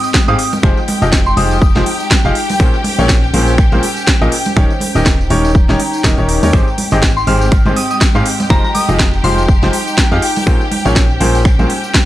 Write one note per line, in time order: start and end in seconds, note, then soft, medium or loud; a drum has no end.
0.00 3.25 G#3 medium
0.00 1.33 C4 medium
0.00 6.52 G4 medium
0.00 2.35 G5 medium
0.00 6.52 G5 medium
0.00 0.10 D#6 medium
0.00 tambourine medium
0.14 kick loud
0.14 snare loud
0.14 tambourine medium
0.14 high conga medium
0.28 0.35 G#2 medium
0.28 0.37 G#2 loud
0.28 0.37 C4 medium
0.28 0.37 D#4 medium
0.28 0.37 G4 medium
0.28 0.37 G#4 medium
0.28 0.37 F5 loud
0.28 0.35 D#6 medium
0.28 tambourine soft
0.39 0.48 D#6 medium
0.39 open hi-hat loud
0.53 tambourine medium
0.53 high conga loud
0.63 0.73 F1 medium
0.63 0.76 F3 medium
0.63 3.17 D#4 medium
0.63 0.76 D#4 medium
0.63 0.76 F4 medium
0.63 0.76 G4 medium
0.63 0.76 G#4 medium
0.63 0.76 C5 medium
0.63 finger snap medium
0.63 kick loud
0.63 tambourine medium
0.77 tambourine soft
0.88 open hi-hat loud
0.88 high conga loud
1.02 1.35 F1 loud
1.02 1.18 F3 medium
1.02 1.18 D#4 medium
1.02 1.18 F4 medium
1.02 1.18 G4 medium
1.02 1.18 G#4 medium
1.02 1.18 D#5 medium
1.02 tambourine medium
1.12 kick loud
1.12 snare loud
1.26 1.35 C6 medium
1.26 tambourine soft
1.37 1.73 F1 loud
1.37 1.55 F3 medium
1.37 1.55 D#4 medium
1.37 1.55 F4 medium
1.37 1.55 G4 medium
1.37 1.55 G#4 medium
1.37 1.55 C5 loud
1.37 2.06 D#6 medium
1.37 open hi-hat loud
1.37 high conga medium
1.51 tambourine medium
1.62 kick loud
1.62 tambourine medium
1.75 1.83 F1 loud
1.75 1.85 F3 medium
1.75 1.85 D#4 medium
1.75 1.85 F4 medium
1.75 1.85 G4 medium
1.75 1.85 G#4 medium
1.75 1.85 C5 medium
1.75 snare soft
1.75 tambourine soft
1.75 high conga loud
1.86 open hi-hat loud
2.00 tambourine medium
2.11 kick loud
2.11 snare loud
2.11 tambourine medium
2.11 high conga medium
2.25 2.32 F1 medium
2.25 2.34 D#4 loud
2.25 2.34 F4 medium
2.25 2.34 G4 medium
2.25 2.34 G#4 medium
2.25 2.34 F5 loud
2.25 tambourine soft
2.35 5.19 C#4 medium
2.35 open hi-hat loud
2.45 4.57 C5 medium
2.49 open hi-hat medium
2.49 tambourine medium
2.49 high conga loud
2.60 2.69 A#1 loud
2.60 2.72 A#2 medium
2.60 2.72 C#4 medium
2.60 2.72 F4 medium
2.60 2.72 G#4 medium
2.60 2.72 A#4 medium
2.60 2.72 C5 medium
2.60 finger snap medium
2.60 kick loud
2.60 tambourine medium
2.74 tambourine soft
2.84 open hi-hat loud
2.84 high conga medium
2.99 3.32 A#1 loud
2.99 3.15 A#2 medium
2.99 3.15 C#4 medium
2.99 3.15 F4 medium
2.99 3.15 G#4 medium
2.99 3.15 A#4 medium
2.99 3.15 C#5 medium
2.99 tambourine medium
3.09 kick loud
3.09 snare loud
3.09 tambourine medium
3.24 tambourine soft
3.34 3.70 A#1 medium
3.34 3.52 A#2 medium
3.34 3.52 C#4 medium
3.34 3.52 F4 medium
3.34 3.52 G#4 medium
3.34 3.52 A#4 medium
3.34 3.52 C5 loud
3.34 open hi-hat loud
3.34 high conga medium
3.47 tambourine medium
3.58 finger snap medium
3.58 kick loud
3.58 tambourine medium
3.72 3.79 A#1 loud
3.72 3.82 A#2 medium
3.72 3.82 C#4 medium
3.72 3.82 F4 medium
3.72 3.82 G#4 medium
3.72 3.82 A#4 medium
3.72 3.82 C5 loud
3.72 tambourine soft
3.72 high conga medium
3.83 open hi-hat loud
3.96 tambourine medium
4.07 kick loud
4.07 snare loud
4.07 tambourine medium
4.07 high conga medium
4.21 4.29 A#1 medium
4.21 4.31 A#2 loud
4.21 4.31 C#4 medium
4.21 4.31 F4 medium
4.21 4.31 G#4 medium
4.21 4.31 A#4 medium
4.21 4.31 D#5 loud
4.21 tambourine soft
4.32 open hi-hat loud
4.46 tambourine medium
4.46 high conga loud
4.56 4.66 D#1 loud
4.56 4.69 D#3 medium
4.56 4.69 C#4 medium
4.56 7.33 D#4 medium
4.56 4.69 D#4 medium
4.56 4.69 G4 medium
4.56 4.69 A#4 medium
4.56 4.69 C#5 medium
4.56 finger snap medium
4.56 kick loud
4.56 tambourine medium
4.70 tambourine soft
4.75 10.22 G5 medium
4.80 open hi-hat loud
4.80 high conga medium
4.95 5.28 D#1 medium
4.95 5.12 D#3 medium
4.95 5.12 C#4 medium
4.95 5.12 D#4 medium
4.95 5.12 G4 medium
4.95 5.12 A#4 medium
4.95 5.12 D#5 medium
4.95 tambourine medium
5.06 6.53 C#5 medium
5.06 kick loud
5.06 snare loud
5.21 tambourine soft
5.30 5.66 D#1 loud
5.30 5.49 D#3 medium
5.30 5.49 C#4 medium
5.30 5.49 D#4 medium
5.30 5.49 G4 medium
5.30 5.49 A#4 medium
5.30 5.49 C#5 loud
5.30 open hi-hat loud
5.30 high conga medium
5.45 tambourine medium
5.55 kick loud
5.55 tambourine medium
5.69 5.76 D#1 loud
5.69 5.78 D#3 medium
5.69 5.78 C#4 medium
5.69 5.78 D#4 medium
5.69 5.78 G4 medium
5.69 5.78 A#4 medium
5.69 5.78 C#5 medium
5.69 snare soft
5.69 tambourine soft
5.69 high conga medium
5.80 open hi-hat loud
5.93 tambourine medium
6.04 6.15 D#1 loud
6.04 6.16 D#3 medium
6.04 6.16 C#4 medium
6.04 6.16 D#4 medium
6.04 6.16 G4 medium
6.04 6.16 A#4 medium
6.04 6.16 D#5 medium
6.04 kick loud
6.04 snare loud
6.04 tambourine medium
6.04 high conga medium
6.18 6.40 D#1 loud
6.18 6.40 D#3 medium
6.18 6.40 C#4 medium
6.18 6.40 D#4 medium
6.18 6.40 G4 medium
6.18 6.40 A#4 medium
6.18 6.40 C#5 medium
6.18 tambourine soft
6.29 open hi-hat loud
6.43 6.51 D#2 loud
6.43 6.52 C#4 medium
6.43 6.52 D#4 medium
6.43 6.52 G4 medium
6.43 6.52 A#4 medium
6.43 6.52 C#5 medium
6.43 open hi-hat medium
6.43 tambourine medium
6.43 high conga medium
6.53 6.63 G#1 medium
6.53 6.66 G#2 medium
6.53 6.66 C4 medium
6.53 9.14 C4 medium
6.53 6.66 D#4 medium
6.53 6.66 G4 medium
6.53 12.05 G4 medium
6.53 6.66 G#4 medium
6.53 6.66 C5 medium
6.53 12.05 G5 medium
6.53 finger snap medium
6.53 kick loud
6.53 tambourine medium
6.68 tambourine soft
6.78 open hi-hat loud
6.78 high conga medium
6.91 7.25 G#1 medium
6.91 7.08 G#2 medium
6.91 7.08 C4 medium
6.91 7.08 D#4 medium
6.91 7.08 G4 medium
6.91 7.08 G#4 medium
6.91 7.08 D#5 medium
6.91 tambourine medium
7.03 11.12 G#3 medium
7.03 kick loud
7.03 snare loud
7.03 tambourine medium
7.17 7.25 C6 medium
7.17 tambourine soft
7.27 7.63 G#1 medium
7.27 7.46 G#2 medium
7.27 7.46 C4 medium
7.27 7.46 D#4 medium
7.27 7.46 G4 medium
7.27 7.46 G#4 medium
7.27 7.45 C5 loud
7.27 7.66 F6 medium
7.27 open hi-hat loud
7.27 high conga medium
7.41 tambourine medium
7.52 finger snap medium
7.52 kick loud
7.52 tambourine medium
7.66 7.73 G#1 loud
7.66 7.75 G#2 medium
7.66 7.75 C4 medium
7.66 7.75 D#4 medium
7.66 7.75 G4 medium
7.66 7.75 G#4 medium
7.66 7.75 C5 medium
7.66 tambourine soft
7.66 high conga medium
7.76 7.85 D#6 medium
7.76 open hi-hat loud
7.91 7.97 D#6 medium
7.91 tambourine medium
8.01 kick loud
8.01 snare loud
8.01 tambourine medium
8.01 high conga medium
8.15 8.22 G#2 loud
8.15 8.24 G#2 medium
8.15 8.24 C4 medium
8.15 8.24 D#4 medium
8.15 8.24 G4 medium
8.15 8.24 G#4 medium
8.15 8.24 F5 loud
8.15 tambourine soft
8.26 open hi-hat loud
8.40 tambourine medium
8.40 high conga medium
8.50 8.60 F1 medium
8.50 8.63 F3 medium
8.50 8.62 D#4 medium
8.50 11.12 D#4 medium
8.50 8.62 F4 medium
8.50 8.63 G4 medium
8.50 8.63 G#4 medium
8.50 8.63 C5 medium
8.50 8.59 A#5 medium
8.50 finger snap medium
8.50 kick loud
8.50 tambourine medium
8.64 8.71 A#5 medium
8.64 tambourine soft
8.75 8.97 D#6 medium
8.75 open hi-hat loud
8.75 high conga medium
8.89 9.22 F1 medium
8.89 9.05 F3 medium
8.89 9.05 D#4 medium
8.89 9.05 F4 medium
8.89 9.05 G4 medium
8.89 9.05 G#4 medium
8.89 9.05 D#5 medium
8.89 tambourine medium
8.99 kick loud
8.99 snare loud
8.99 tambourine medium
9.14 tambourine soft
9.24 9.60 F1 medium
9.24 9.42 F3 medium
9.24 9.42 D#4 medium
9.24 9.42 F4 medium
9.24 9.42 G4 medium
9.24 9.42 G#4 medium
9.24 9.42 C5 loud
9.24 9.63 C6 medium
9.24 open hi-hat loud
9.24 high conga medium
9.38 tambourine medium
9.48 kick loud
9.48 tambourine medium
9.62 9.70 F1 loud
9.62 9.72 F3 medium
9.62 9.72 D#4 medium
9.62 9.72 F4 medium
9.62 9.72 G4 medium
9.62 9.72 G#4 medium
9.62 9.72 C5 medium
9.62 snare soft
9.62 tambourine soft
9.62 high conga medium
9.73 open hi-hat loud
9.87 tambourine medium
9.97 kick loud
9.97 snare loud
9.97 tambourine medium
9.97 high conga medium
10.12 10.19 F2 loud
10.12 10.21 D#4 loud
10.12 10.21 F4 medium
10.12 10.21 G4 medium
10.12 10.21 G#4 medium
10.12 10.21 F5 loud
10.12 tambourine soft
10.22 12.05 C#4 medium
10.22 open hi-hat loud
10.36 12.05 C5 medium
10.36 open hi-hat medium
10.36 tambourine medium
10.36 high conga medium
10.47 10.56 A#1 loud
10.47 10.59 A#2 medium
10.47 10.59 C#4 medium
10.47 10.59 F4 medium
10.47 10.59 G#4 medium
10.47 10.59 A#4 medium
10.47 10.59 C5 medium
10.47 finger snap medium
10.47 kick loud
10.47 tambourine medium
10.61 tambourine soft
10.71 open hi-hat loud
10.71 high conga medium
10.85 11.18 A#1 medium
10.85 11.02 A#2 medium
10.85 11.02 C#4 medium
10.85 11.02 F4 medium
10.85 11.02 G#4 medium
10.85 11.02 A#4 medium
10.85 11.02 C#5 medium
10.85 tambourine medium
10.96 kick loud
10.96 snare loud
10.96 tambourine medium
11.10 tambourine soft
11.20 11.56 A#1 loud
11.20 11.39 A#2 medium
11.20 11.39 C#4 medium
11.20 11.39 F4 medium
11.20 11.39 G#4 medium
11.20 11.39 A#4 medium
11.20 11.39 C5 loud
11.20 open hi-hat loud
11.20 high conga medium
11.35 tambourine medium
11.45 finger snap medium
11.45 kick loud
11.45 tambourine medium
11.59 11.66 A#1 loud
11.59 11.68 A#2 medium
11.59 11.69 C#4 medium
11.59 11.68 F4 medium
11.59 11.69 G#4 medium
11.59 11.68 A#4 medium
11.59 11.69 C5 medium
11.59 tambourine soft
11.59 high conga medium
11.70 open hi-hat loud
11.84 tambourine medium
11.94 kick loud
11.94 snare loud
11.94 tambourine medium
11.94 high conga medium